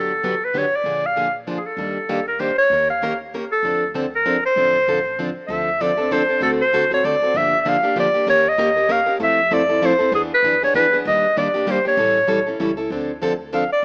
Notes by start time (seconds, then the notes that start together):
Already playing: G1 D3 F#3 B3 D4 G4 A4
0.23 D3 F#3 B3 D4 G4
0.45 B4
0.54 D3 F#3 B3 D4 G4 C#5
0.76 D5
0.84 A#1 D3 F3 A#3 D4 G#4
1.06 F5
1.16 D3 F3 A#3 D4 G#4
1.47 D3 F3 A#3 D4 G#4
1.57 G#4
1.66 A4
1.77 D#2 D#3 G3 A#3 D4 G4
2.09 D#3 G3 A#3 D4 G4
2.28 A#4
2.39 D#3 G3 A#3 D4 G4 C5
2.58 C#5
2.70 D#2 D#3 A#3 C#4 G4 A#4
2.90 F5
3.02 D#3 A#3 C#4 G4 A#4
3.34 D#3 A#3 C#4 G4 A#4
3.52 A4
3.63 D2 D3 F3 C4 D4 A4
3.94 D3 F3 C4 D4 A4
4.15 A#4
4.25 D3 F3 C4 D4 A4
4.46 C5
4.56 A1 D3 F3 C4 D4 A4
4.88 D3 F3 C4 D4 A4
5.19 D3 F3 C4 D4 A4
5.46 D2 D3 F3 C4 D4 A4 D#5
5.52 E5
5.80 D3 F3 C4 D4 A4 D5
5.97 C4 D4 A4
6.11 D3 F3 C4 D4 A4 C5
6.29 C4 D4 A4
6.41 D2 D3 A3 C4 F#4 A4
6.61 C5
6.73 D3 A3 C4 F#4 A4
6.90 C4 F#4 A4 C#5
7.04 D3 A3 C4 F#4 A4 D5
7.22 C4 F#4 A4
7.34 G1 D3 F3 A#3 D4 G4 E5
7.61 E5
7.65 D3 F3 A#3 D4 G4 F5
7.83 A#3 D4 G4
7.96 D3 F3 A#3 D4 G4 D5
8.14 A#3 D4 G4
8.27 D#2 D#3 A#3 C#4 G4 A#4 C#5
8.48 D#5
8.58 D#3 A#3 C#4 G4 A#4
8.76 C#4 G4 A#4
8.89 D#3 A#3 C#4 G4 A#4 F5
9.06 C#4 G4 A#4
9.19 F2 F3 A3 C4 E4 A4
9.23 E5
9.51 F3 A3 C4 E4 A4 D5
9.69 C4 E4 A4
9.82 F3 A3 C4 E4 A4 C5
9.99 C4 E4 A4
10.12 E2 E3 B3 D4 G#4
10.34 B4
10.42 F#2 E3 B3 D4 G#4
10.63 B3 D4 G#4 C#5
10.74 E2 E3 B3 D4 G#4 B4
10.93 B3 D4 G#4
11.05 D#2 D#3 G3 A#3 D4 G4 D#5
11.37 D#3 G3 A#3 D4 G4 D5
11.54 A#3 D4 G4
11.67 D#3 G3 A#3 D4 G4 C5
11.85 A#3 D4 G4 C#5
11.97 A1 E3 G3 C#4 E4 A4
12.27 A#1 E3 G3 C#4 E4 A4
12.46 C#4 E4 A4
12.60 C#2 E3 G3 C#4 E4 A4
12.77 C#4 E4 A4
12.90 D2 D3 F3 C4 D4 A4
13.22 D3 F3 C4 D4 A4
13.52 D3 F3 C4 D4 A4 F5
13.73 D5